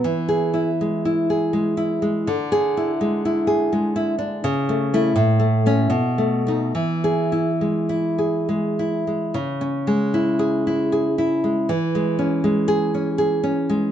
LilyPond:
\new Staff \with { instrumentName = "Nylon-string guitar" } { \time 3/4 \key e \major \tempo 4 = 79 << { \tuplet 3/2 { r8 gis'4 } r2 | \tuplet 3/2 { r8 gis'4 } r2 | \tuplet 3/2 { r4 e'8 r4 cis'8 r4 dis'8 } | \tuplet 3/2 { r8 gis'4 } r2 |
\key cis \minor r4 \tuplet 3/2 { r8 gis'4 } r4 | r4 \tuplet 3/2 { r8 gis'4 } r4 | } \\ { \tuplet 3/2 { e4 e'8 gis8 e'8 gis'8 gis8 e'8 gis8 } | \tuplet 3/2 { d4 e'8 gis8 e'8 gis'8 gis8 e'8 d'8 } | \tuplet 3/2 { cis8 a8 a8 a,8 a8 a8 b,8 a8 a8 } | \tuplet 3/2 { e4 e'8 gis8 e'8 gis'8 gis8 e'8 gis8 } |
\tuplet 3/2 { cis8 cis'8 gis8 e'4 e'8 gis'8 e'8 gis8 } | \tuplet 3/2 { e8 gis8 cis'8 gis4 cis'8 gis'8 cis'8 gis8 } | } >> }